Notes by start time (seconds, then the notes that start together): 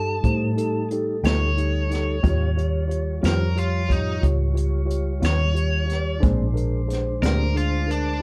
Already playing: G2 G3 D#4 G4 A4 A5
0.23 A2 D#4 G4 C5, kick, closed hi-hat
0.56 D#4 G4 A4, closed hi-hat
0.91 D#4 G4 A4, closed hi-hat
1.23 D2 F3 A3 D#4 G4 A4 C#5, snare, closed hi-hat
1.57 D#4 G4 A4, closed hi-hat
1.90 D#4 G4 A4, snare, closed hi-hat
2.23 D#2 D#3 G3 C#4 F4 G4 C#5, kick, closed hi-hat
2.56 F4 G4 C#5, closed hi-hat
2.88 F4 G4 C#5, closed hi-hat
3.21 F2 D#3 G3 C#4 F4 G4 C5, closed hi-hat
3.26 A#4, snare
3.55 F4 G4 C#5, closed hi-hat
3.88 F4 G4 C#5, kick, closed hi-hat
3.92 D#4
4.21 C#2 F4 G4 C#5, kick, closed hi-hat
4.54 F4 G4 C#5, closed hi-hat
4.85 F4 G4 C#5
4.90 closed hi-hat
5.20 D#2 D#3 G3 C#4 F4 G4 C#5, closed hi-hat
5.25 C#5, snare
5.54 F4 G4 C#5, closed hi-hat
5.86 F4 G4 C#5, closed hi-hat
5.92 snare
6.20 A#1 A#2 G#3 C4 D4 G#4 C5, kick, closed hi-hat
6.24 D4
6.53 D4 G#4 A#4, closed hi-hat
6.88 D4 G#4 C5, closed hi-hat
6.92 snare
7.21 D2 A#2 G#3 C4 D4 G#4 A#4, closed hi-hat
7.25 snare
7.55 D4 F4 G#4 C5, closed hi-hat
7.86 D4 G#4 A#4
7.91 D4, closed hi-hat